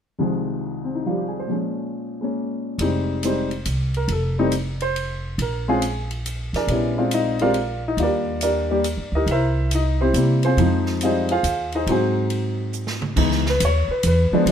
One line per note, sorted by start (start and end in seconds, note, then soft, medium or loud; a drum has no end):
0.19 1.49 C2 soft
0.19 1.49 D#3 soft
0.19 1.04 F3 soft
0.19 1.49 G#3 medium
0.84 0.98 C4 soft
0.95 1.10 D#4 soft
1.06 1.48 F3 soft
1.06 1.50 G3 soft
1.06 1.26 F4 soft
1.18 1.35 G4 soft
1.28 1.41 G#4 soft
1.40 1.54 C5 soft
1.47 2.78 A#2 soft
1.47 2.79 F3 soft
1.47 2.19 G#3 soft
1.52 2.22 C#4 soft
2.21 2.79 G#3 soft
2.21 2.79 A#3 soft
2.21 2.80 C#4 soft
2.78 3.61 F1 medium
2.78 3.21 G3 soft
2.78 3.22 G#3 soft
2.78 3.22 C4 soft
2.78 3.22 D#4 medium
2.78 ride medium
3.23 3.49 G3 soft
3.23 3.49 G#3 soft
3.23 3.49 C4 soft
3.23 3.49 D#4 medium
3.23 3.92 C5 medium
3.23 hi-hat pedal soft
3.23 ride soft
3.51 ride soft
3.65 4.06 C2 medium
3.65 hi-hat pedal soft
3.65 ride medium
3.94 4.10 A#4 medium
3.94 ride soft
4.08 5.34 F1 medium
4.08 4.51 A4 medium
4.08 ride soft
4.39 4.51 G3 medium
4.39 4.51 A3 medium
4.39 4.51 C4 medium
4.39 4.51 D#4 medium
4.52 hi-hat pedal soft
4.52 ride soft
4.80 5.35 C5 medium
4.80 ride soft
4.96 ride soft
5.38 6.49 A#1 medium
5.38 5.68 A#4 medium
5.38 ride medium
5.68 5.81 G#3 medium
5.68 5.81 C4 medium
5.68 5.81 C#4 medium
5.68 5.81 F4 medium
5.68 6.08 G#4 medium
5.82 hi-hat pedal soft
5.82 ride medium
6.11 ride soft
6.26 hi-hat pedal soft
6.26 ride medium
6.53 6.67 F2 medium
6.53 6.97 D4 soft
6.53 7.09 G#4 medium
6.53 7.09 A#4 medium
6.53 7.09 D5 medium
6.53 snare soft
6.53 ride soft
6.67 7.94 A#1 medium
6.67 6.94 G3 soft
6.67 6.95 B3 soft
6.67 6.95 C#4 soft
6.67 6.95 E4 medium
6.67 ride soft
6.98 7.35 G#3 medium
6.98 7.35 C4 soft
6.98 7.35 D4 medium
6.98 7.35 F4 medium
7.11 7.41 D#4 medium
7.11 7.41 D#5 medium
7.11 hi-hat pedal soft
7.11 ride medium
7.39 7.54 G#3 medium
7.39 7.54 C4 medium
7.39 7.54 D4 soft
7.39 7.81 F4 medium
7.39 7.54 G4 medium
7.39 7.81 A#4 medium
7.39 7.82 D5 medium
7.39 7.81 F5 medium
7.39 ride soft
7.54 ride soft
7.88 8.00 D#4 medium
7.88 8.00 D#5 medium
7.97 8.95 D#2 medium
7.97 8.65 G3 medium
7.97 8.65 A#3 soft
7.97 8.02 D4 soft
7.97 8.65 F4 soft
7.97 ride soft
8.03 8.42 D4 medium
8.03 8.42 G4 medium
8.03 8.41 A#4 soft
8.03 8.41 D5 medium
8.41 8.69 D4 medium
8.41 8.70 G4 soft
8.41 9.10 A#4 medium
8.41 9.10 D5 medium
8.41 hi-hat pedal soft
8.41 ride medium
8.71 8.83 G3 medium
8.71 8.84 A#3 soft
8.71 8.84 D4 soft
8.71 8.84 G4 medium
8.84 hi-hat pedal soft
8.84 ride medium
8.97 9.11 G2 medium
9.12 9.26 D2 medium
9.12 9.29 G4 medium
9.12 9.29 A#4 medium
9.12 9.28 D#5 medium
9.16 9.29 D#4 medium
9.26 10.10 C2 medium
9.26 ride soft
9.31 9.70 E4 medium
9.31 9.70 A#4 medium
9.31 9.70 C5 medium
9.31 9.70 E5 medium
9.71 10.01 D#4 medium
9.71 hi-hat pedal soft
9.71 ride medium
9.75 10.01 D#5 medium
10.01 10.15 C4 medium
10.01 10.15 E4 medium
10.01 10.54 G4 medium
10.01 10.43 C5 medium
10.13 10.54 C3 medium
10.13 10.40 G3 soft
10.13 10.41 A#3 soft
10.13 10.41 C4 soft
10.13 10.41 E4 medium
10.13 hi-hat pedal soft
10.13 ride soft
10.43 10.58 C4 medium
10.43 10.99 F4 medium
10.43 10.98 G#4 medium
10.43 10.98 C5 medium
10.43 ride soft
10.57 11.40 F2 medium
10.57 11.00 F3 medium
10.57 11.00 G#3 medium
10.57 11.00 C4 soft
10.57 11.01 D#4 medium
10.57 ride soft
10.86 snare soft
11.01 11.27 G3 medium
11.01 11.27 G#3 soft
11.01 11.28 C4 soft
11.01 11.28 F4 medium
11.01 11.31 D#5 medium
11.01 hi-hat pedal soft
11.01 ride medium
11.05 11.31 D#4 soft
11.05 11.30 G#4 soft
11.05 11.30 C5 medium
11.29 11.71 F4 medium
11.29 11.71 G#4 medium
11.29 11.71 C5 medium
11.29 11.71 F5 medium
11.29 ride soft
11.43 11.84 D#2 medium
11.43 hi-hat pedal soft
11.43 ride medium
11.72 11.88 D#4 medium
11.72 11.89 G#4 soft
11.72 11.89 C5 medium
11.72 11.88 D#5 medium
11.72 ride soft
11.87 13.13 G#2 medium
11.87 13.09 F#3 medium
11.87 13.09 G#3 soft
11.87 13.09 C4 soft
11.87 13.09 D#4 medium
11.87 12.57 C5 medium
11.87 ride medium
11.91 12.57 F#4 medium
11.91 12.57 G#4 medium
12.30 ride soft
12.73 hi-hat pedal soft
12.87 snare soft
13.02 mid tom medium
13.16 13.58 C#2 medium
13.16 13.42 E3 medium
13.16 13.42 G#3 soft
13.16 13.43 B3 medium
13.16 13.43 D#4 medium
13.16 kick medium
13.16 crash medium
13.31 snare soft
13.46 13.62 B4 medium
13.46 snare soft
13.60 13.87 D#2 medium
13.60 hi-hat pedal medium
13.60 ride medium
13.65 13.90 C#5 medium
13.88 14.04 B4 medium
13.88 muted upright bass stroke soft
14.03 14.30 E2 medium
14.03 hi-hat pedal soft
14.03 ride medium
14.07 14.33 B4 medium
14.32 14.46 F3 medium
14.32 14.46 G#3 medium
14.32 14.46 B3 medium
14.32 14.46 D4 medium
14.32 muted upright bass stroke soft
14.46 14.52 C#2 medium
14.46 14.52 F3 medium
14.46 14.52 G#3 medium
14.46 ride medium